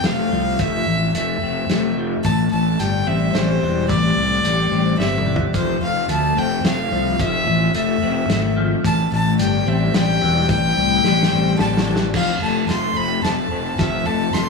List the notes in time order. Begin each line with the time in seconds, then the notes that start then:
Already playing: F3 C4
0.04 F1 A3 F5, snare, closed hi-hat
0.31 C2 F3
0.59 F1 F3 E5, kick, closed hi-hat
0.87 A1
1.14 F1 A3 E5, closed hi-hat
1.42 F1 C4
1.70 F1 A3, snare, closed hi-hat
1.98 F3
2.24 A1 A2 A5, kick, closed hi-hat
2.51 A1 A5
2.79 G1 G3 G5, closed hi-hat
3.07 A1 C4 E5
3.33 A1 G3 C5, snare, closed hi-hat
3.61 E1 E3
3.88 A1 A2 D5, kick, closed hi-hat
4.16 C2
4.43 A1 G3, closed hi-hat
4.71 A1 C4
4.99 G1 G3 E5, snare
5.18 mid tom
5.26 E3
5.36 floor tom
5.54 F1 F3 C5, kick, closed hi-hat
5.82 F1 F5
6.08 D2 A3 A5, closed hi-hat
6.36 F1 C4 G5
6.64 F1 A3 F5, snare, closed hi-hat
6.92 C2 F3
7.19 F1 F3 E5, kick, closed hi-hat
7.46 A1
7.74 F1 A3 E5, closed hi-hat
8.02 F1 C4
8.28 G#1 A3, snare, closed hi-hat
8.56 F3
8.84 A1 A2 A5, kick, closed hi-hat
9.12 A1 A5
9.38 G1 G3 G5, closed hi-hat
9.66 A1 C4 E5
9.94 A1 G3 G5, snare, closed hi-hat
10.22 E1 E3
10.49 A1 A2 G5, kick, closed hi-hat
10.77 C2
11.04 A1 G3, snare
11.23 snare
11.31 A1 C4
11.58 A1 G3 A5, snare
11.77 snare
11.87 E3
11.96 snare
12.13 F1 F3 F5, kick, snare, crash
12.41 F1 A3 A5
12.69 F1 A3 C6, snare, closed hi-hat
12.96 F1 C4 B5
13.23 F1 A3 A5, snare, closed hi-hat
13.51 F1 C4
13.78 F1 F3 E5, kick, snare, closed hi-hat
14.06 F1 A3 A5
14.33 F1 A3 C6, snare, closed hi-hat